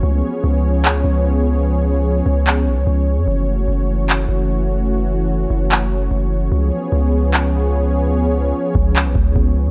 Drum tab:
CP |----x---|----x---|----x---|----x---|
BD |--------|--------|--------|--------|

CP |----x---|----x---|
BD |--------|---o-oo-|